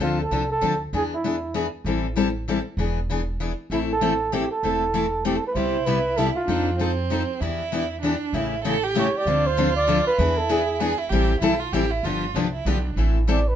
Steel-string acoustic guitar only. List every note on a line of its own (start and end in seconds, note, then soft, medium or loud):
0.00 0.20 D3 medium
0.00 0.20 F3 medium
0.00 0.20 C4 medium
0.00 0.20 D4 medium
0.00 0.21 A4 medium
0.31 0.42 D3 medium
0.31 0.42 F3 medium
0.31 0.43 C4 medium
0.31 0.43 D4 medium
0.31 0.43 A4 medium
0.61 0.73 D3 medium
0.61 0.73 F3 medium
0.61 0.73 C4 medium
0.61 0.73 D4 medium
0.61 0.73 A4 medium
0.93 1.13 E3 medium
0.93 1.13 B3 medium
0.93 1.13 D4 medium
0.93 1.13 G#4 medium
1.24 1.35 E3 medium
1.24 1.35 B3 medium
1.24 1.35 D4 medium
1.24 1.36 G#4 medium
1.54 1.65 E3 medium
1.54 1.65 B3 medium
1.54 1.66 D4 medium
1.54 1.66 G#4 medium
1.86 2.06 E3 medium
1.86 2.06 G3 medium
1.86 2.06 C4 medium
1.86 2.06 E4 medium
1.86 2.06 A4 medium
2.16 2.27 E3 medium
2.16 2.27 G3 medium
2.16 2.27 C4 medium
2.16 2.28 E4 medium
2.16 2.28 A4 medium
2.48 2.58 E3 medium
2.48 2.59 G3 medium
2.48 2.59 C4 medium
2.48 2.59 E4 medium
2.48 2.59 A4 medium
2.78 2.98 E3 medium
2.78 2.98 B3 medium
2.78 2.99 D4 medium
2.78 2.99 G#4 medium
3.10 3.20 E3 medium
3.10 3.21 B3 medium
3.10 3.21 D4 medium
3.10 3.21 G#4 medium
3.40 3.51 E3 medium
3.40 3.51 B3 medium
3.40 3.51 D4 medium
3.40 3.51 G#4 medium
3.71 3.91 E3 medium
3.71 3.91 A3 medium
3.71 3.91 C4 medium
3.71 3.91 E4 medium
3.71 3.91 A4 medium
4.01 4.12 E3 medium
4.01 4.12 A3 medium
4.01 4.13 C4 medium
4.01 4.13 E4 medium
4.01 4.13 A4 medium
4.32 4.43 E3 medium
4.32 4.43 A3 medium
4.32 4.44 C4 medium
4.32 4.44 E4 medium
4.32 4.44 A4 medium
4.63 4.83 E3 medium
4.63 4.83 A3 medium
4.63 4.83 C4 medium
4.63 4.84 E4 medium
4.63 4.84 A4 medium
4.94 5.05 E3 medium
4.94 5.05 A3 medium
4.94 5.05 C4 medium
4.94 5.05 E4 medium
4.94 5.06 A4 medium
5.25 5.36 E3 medium
5.25 5.36 A3 medium
5.25 5.36 C4 medium
5.25 5.36 E4 medium
5.25 5.36 A4 medium
5.55 5.76 C3 medium
5.55 5.76 G3 medium
5.55 5.76 B3 medium
5.55 5.76 E4 medium
5.55 5.76 G4 medium
5.86 5.97 C3 medium
5.86 5.98 G3 medium
5.86 5.98 B3 medium
5.86 5.98 E4 medium
5.86 5.98 G4 medium
6.18 6.28 C3 medium
6.18 6.29 G3 medium
6.18 6.29 B3 medium
6.18 6.29 E4 medium
6.18 6.29 G4 medium
6.48 6.68 F3 medium
6.48 6.68 C4 medium
6.48 6.69 D#4 medium
6.48 6.69 A4 medium
6.79 6.90 F3 medium
6.79 6.91 C4 medium
6.79 6.91 D#4 medium
6.79 6.91 A4 medium
7.10 7.21 F3 medium
7.10 7.21 C4 medium
7.10 7.22 D#4 medium
7.10 7.22 A4 medium
7.42 7.61 E3 medium
7.42 7.61 B3 medium
7.42 7.62 D4 medium
7.42 7.62 G4 medium
7.72 7.83 E3 medium
7.72 7.83 B3 medium
7.72 7.84 D4 medium
7.72 7.84 G4 medium
8.03 8.14 E3 medium
8.03 8.14 B3 medium
8.03 8.14 D4 medium
8.03 8.15 G4 medium
8.34 8.54 C#3 medium
8.34 8.54 E3 medium
8.34 8.54 A3 medium
8.34 8.54 C#4 medium
8.34 8.54 G4 medium
8.65 8.75 C#3 medium
8.65 8.76 E3 medium
8.65 8.76 A3 medium
8.65 8.76 C#4 medium
8.65 8.76 G4 medium
8.95 9.06 C#3 medium
8.95 9.06 E3 medium
8.95 9.06 A3 medium
8.95 9.07 C#4 medium
8.95 9.07 G4 medium
9.27 9.46 D3 medium
9.27 9.47 F3 medium
9.27 9.47 C4 medium
9.27 9.47 D4 medium
9.27 9.47 A4 medium
9.57 9.68 D3 medium
9.57 9.68 F3 medium
9.57 9.69 C4 medium
9.57 9.69 D4 medium
9.57 9.69 A4 medium
9.87 9.98 D3 medium
9.87 9.99 F3 medium
9.87 9.99 C4 medium
9.87 9.99 D4 medium
9.87 9.99 A4 medium
10.19 10.39 E3 medium
10.19 10.39 B3 medium
10.19 10.39 D4 medium
10.19 10.39 G#4 medium
10.49 10.60 E3 medium
10.49 10.61 B3 medium
10.49 10.61 D4 medium
10.49 10.61 G#4 medium
10.80 10.91 E3 medium
10.80 10.91 B3 medium
10.80 10.92 D4 medium
10.80 10.92 G#4 medium
11.12 11.31 E3 medium
11.12 11.32 G3 medium
11.12 11.32 C4 medium
11.12 11.32 E4 medium
11.12 11.32 A4 medium
11.42 11.53 E3 medium
11.42 11.53 G3 medium
11.42 11.53 C4 loud
11.42 11.54 E4 loud
11.42 11.54 A4 loud
11.73 11.84 E3 medium
11.73 11.84 G3 medium
11.73 11.84 C4 medium
11.73 11.85 E4 medium
11.73 11.85 A4 medium
12.04 12.24 D3 medium
12.04 12.24 F3 medium
12.04 12.24 B3 medium
12.04 12.25 D4 medium
12.04 12.25 G4 medium
12.36 12.46 D3 medium
12.36 12.46 F3 medium
12.36 12.46 B3 medium
12.36 12.46 D4 medium
12.36 12.47 G4 medium
12.66 12.77 D3 medium
12.66 12.77 F3 medium
12.66 12.77 B3 medium
12.66 12.77 D4 medium
12.66 12.78 G4 medium
12.97 13.17 E3 medium
12.97 13.17 A3 medium
12.97 13.17 C4 medium
12.97 13.17 E4 medium
12.97 13.18 A4 medium
13.28 13.38 E3 medium
13.28 13.39 A3 medium
13.28 13.39 C4 medium
13.28 13.39 E4 medium
13.28 13.39 A4 medium